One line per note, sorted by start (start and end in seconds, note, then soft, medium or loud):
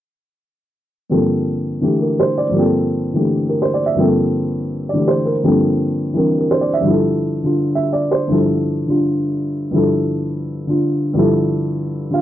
1.10 2.48 G2 soft
1.10 1.79 D3 soft
1.10 2.52 F3 soft
1.10 2.54 A#3 soft
1.10 2.55 C4 soft
1.10 2.55 A4 soft
1.81 2.50 D3 soft
1.81 2.54 E3 soft
1.81 2.54 A3 soft
1.81 2.55 G4 soft
2.01 2.25 A#4 soft
2.20 2.46 C5 soft
2.38 2.62 D5 soft
2.49 3.93 G2 soft
2.49 3.12 D3 soft
2.54 3.96 F3 soft
2.54 3.97 A#3 soft
2.58 3.98 C4 soft
2.58 3.99 A4 soft
3.13 3.95 D3 soft
3.13 3.98 E3 soft
3.13 3.99 A3 soft
3.13 3.99 G4 soft
3.49 3.68 A#4 soft
3.62 3.84 C5 soft
3.74 3.92 D5 soft
3.86 4.04 E5 soft
3.95 5.40 G2 soft
3.95 4.91 D3 soft
3.95 5.42 F3 soft
3.95 5.42 A#3 soft
4.00 5.43 C4 soft
4.00 5.43 A4 soft
4.89 5.42 D3 soft
4.89 5.14 D5 soft
4.94 5.42 E3 soft
4.94 5.43 A3 soft
4.94 5.43 G4 soft
5.08 5.34 C5 soft
5.26 5.50 A#4 soft
5.43 6.79 G2 soft
5.43 6.81 D3 soft
5.43 6.84 F3 soft
5.43 6.87 A#3 soft
5.43 6.14 C4 soft
5.43 6.87 A4 soft
6.14 6.86 E3 soft
6.14 6.86 G3 soft
6.14 6.87 C4 soft
6.14 6.87 D4 soft
6.14 6.38 A#4 soft
6.39 6.57 A#4 soft
6.51 6.72 C5 soft
6.61 6.80 D5 soft
6.74 6.92 E5 soft
6.80 8.26 G2 soft
6.80 7.42 D3 soft
6.86 8.28 F3 soft
6.86 8.30 E4 soft
6.91 8.31 A4 medium
7.44 8.27 D3 soft
7.44 8.29 D4 soft
7.44 8.30 F4 soft
7.75 8.00 E5 soft
7.93 8.21 D5 soft
8.11 8.36 C5 soft
8.28 9.70 G2 soft
8.28 8.86 D3 soft
8.28 9.71 F3 soft
8.28 9.73 E4 soft
8.32 9.74 A4 soft
8.87 9.71 D3 soft
8.87 9.73 D4 soft
8.87 9.74 F4 soft
9.71 11.12 G2 soft
9.71 10.65 D3 soft
9.71 11.15 F3 soft
9.71 11.16 E4 soft
9.76 11.17 A4 soft
10.67 11.13 D3 soft
10.67 11.17 D4 soft
10.67 11.17 F4 soft
11.14 12.21 G2 medium
11.14 12.09 D3 soft
11.14 12.21 F3 soft
11.18 12.21 E4 soft
11.18 12.21 A4 medium
12.10 12.21 D3 soft
12.10 12.21 D4 soft
12.10 12.21 F4 soft
12.10 12.21 F5 soft